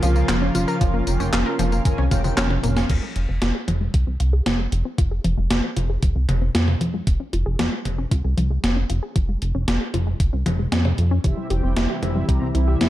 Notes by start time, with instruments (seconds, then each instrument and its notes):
Already playing: analog synth pad C#3 F3 A#3 F4
0.03 analog synth bass C2, synth arpeggio sound F3, analog polysynth C#4 F4 A#4 F5, closed hi-hat, tambourine
0.16 synth arpeggio sound A#3, tambourine
0.29 analog synth bass F1, analog polysynth C#4 F4 A#4 F5, snare, clap, closed hi-hat, tambourine
0.42 synth arpeggio sound C#4
0.55 analog synth bass F1, analog polysynth C#4 F4 A#4 F5, synth arpeggio sound F4, closed hi-hat, tambourine
0.68 synth arpeggio sound A#4, tambourine
0.81 analog synth bass F1, synth arpeggio sound F3, analog polysynth C#4 F4 F5, kick, closed hi-hat, tambourine
0.94 synth arpeggio sound A#3
1.07 analog synth bass F1, analog polysynth C#4 F4 A#4 G5, closed hi-hat, tambourine
1.20 analog synth bass F1, synth arpeggio sound C#4, tambourine
1.33 analog synth bass F1, analog polysynth C#4 F4 A#4 F5, synth arpeggio sound F4, snare, clap, closed hi-hat, tambourine
1.46 synth arpeggio sound A#4
1.59 analog synth bass F1, synth arpeggio sound F3, analog polysynth C#4 F4 A#4 F5, snare, closed hi-hat, mid tom, tambourine
1.72 synth arpeggio sound A#3, tambourine
1.85 analog synth bass F1, analog polysynth C#4 F4 A#4 G#5, kick, closed hi-hat, high tom, tambourine
1.98 analog synth bass C2, synth arpeggio sound C#4, high tom
2.11 analog synth bass F1, analog polysynth C#4 F4 A#4 G5, synth arpeggio sound F4, kick, closed hi-hat, mid tom, tambourine
2.24 synth arpeggio sound F3, analog polysynth C#4 F4 A#4 G5, mid tom, tambourine
2.37 analog synth bass F1, synth arpeggio sound C#4, analog polysynth C#4 F4 A#4 G5, snare, clap, closed hi-hat, tambourine
2.50 synth arpeggio sound C#4, mid tom
2.63 analog synth bass F1, synth arpeggio sound A#3, analog polysynth C#4 F4 A#4 F5, closed hi-hat, mid tom, tambourine
2.77 synth arpeggio sound C#4, snare, tambourine
2.90 analog synth bass F1, synth arpeggio sound F3, kick, closed hi-hat, crash
3.03 synth arpeggio sound G#3
3.16 analog synth bass F1, closed hi-hat
3.29 analog synth bass F1, synth arpeggio sound C4
3.42 analog synth bass F1, synth arpeggio sound F4, snare, closed hi-hat
3.55 synth arpeggio sound G#4
3.68 analog synth bass F1, synth arpeggio sound F3, closed hi-hat, mid tom
3.81 synth arpeggio sound G#3
3.94 analog synth bass C2, kick, closed hi-hat
4.07 analog synth bass C2, synth arpeggio sound C4
4.20 analog synth bass C2, synth arpeggio sound F4, closed hi-hat
4.33 synth arpeggio sound G#4
4.46 analog synth bass F1, synth arpeggio sound F3, snare, closed hi-hat
4.59 synth arpeggio sound G#3
4.72 analog synth bass F1, closed hi-hat
4.85 synth arpeggio sound C4
4.98 analog synth bass F1, synth arpeggio sound F4, kick, closed hi-hat
5.11 synth arpeggio sound G#4
5.24 analog synth bass F1, synth arpeggio sound F3, closed hi-hat
5.37 analog synth bass F1, synth arpeggio sound G#3
5.50 analog synth bass F1, snare, closed hi-hat
5.64 synth arpeggio sound C4
5.76 analog synth bass F1, synth arpeggio sound F4, closed hi-hat, mid tom
5.90 synth arpeggio sound G#4
6.03 analog synth bass F1, synth arpeggio sound F3, kick, closed hi-hat
6.16 analog synth bass C2, synth arpeggio sound G#3
6.29 analog synth bass F1, closed hi-hat, mid tom
6.42 synth arpeggio sound C4
6.55 analog synth bass F2, synth arpeggio sound F4, snare, closed hi-hat
6.68 synth arpeggio sound G#4, mid tom
6.81 analog synth bass F2, synth arpeggio sound F3, closed hi-hat
6.94 synth arpeggio sound G#3
7.07 analog synth bass F1, kick, closed hi-hat
7.20 synth arpeggio sound C#4
7.33 analog synth bass F1, synth arpeggio sound F4, closed hi-hat
7.46 analog synth bass F1, synth arpeggio sound G#4
7.59 analog synth bass F1, synth arpeggio sound F3, snare, closed hi-hat
7.72 synth arpeggio sound G#3
7.85 analog synth bass F1, closed hi-hat, mid tom
7.98 synth arpeggio sound C#4
8.11 analog synth bass C2, synth arpeggio sound F4, kick, closed hi-hat
8.24 analog synth bass C2, synth arpeggio sound G#4
8.37 analog synth bass C2, synth arpeggio sound F3, closed hi-hat
8.50 synth arpeggio sound G#3
8.64 analog synth bass F1, snare, closed hi-hat
8.76 synth arpeggio sound C#4
8.90 analog synth bass F1, synth arpeggio sound F4, closed hi-hat
9.03 synth arpeggio sound G#4
9.16 analog synth bass F1, synth arpeggio sound F3, kick, closed hi-hat
9.29 synth arpeggio sound G#3
9.42 analog synth bass F1, closed hi-hat
9.55 analog synth bass F1, synth arpeggio sound C#4
9.68 analog synth bass F1, synth arpeggio sound F4, snare, closed hi-hat
9.81 synth arpeggio sound G#4
9.94 analog synth bass F1, synth arpeggio sound F3, closed hi-hat, mid tom
10.07 synth arpeggio sound G#3
10.20 analog synth bass F1, kick, closed hi-hat
10.33 analog synth bass C2, synth arpeggio sound C#4
10.46 analog synth bass F1, synth arpeggio sound F3, closed hi-hat, mid tom
10.59 synth arpeggio sound G#3
10.72 analog synth bass F2, synth arpeggio sound G#3, snare, closed hi-hat
10.85 synth arpeggio sound C#4, mid tom
10.98 analog synth bass F2, closed hi-hat
11.11 synth arpeggio sound C#4
11.24 analog synth bass F1, analog synth pad C3 E3 G3 E4, synth arpeggio sound E3, analog polysynth C4 E4 G4 E5, kick, closed hi-hat
11.37 synth arpeggio sound G3
11.50 analog synth bass F1, analog polysynth C4 E4 G4 G5, synth arpeggio sound G4, closed hi-hat
11.63 analog synth bass F1, synth arpeggio sound C4
11.76 analog synth bass F1, analog polysynth C4 E4 G4 E5, synth arpeggio sound E4, snare, closed hi-hat
11.90 synth arpeggio sound G4
12.02 analog synth bass F1, synth arpeggio sound E3, analog polysynth C4 E4 G4 E5, closed hi-hat, mid tom
12.16 synth arpeggio sound G3
12.29 analog synth bass C2, analog polysynth C4 E4 G4 A#5, synth arpeggio sound G4, kick, closed hi-hat
12.42 analog synth bass C2, synth arpeggio sound C4
12.55 analog synth bass C2, analog polysynth C4 E4 G4 E5, synth arpeggio sound E4, closed hi-hat
12.68 synth arpeggio sound G4
12.81 analog synth bass F1, synth arpeggio sound E3, analog polysynth C4 E4 G4 E5, snare, closed hi-hat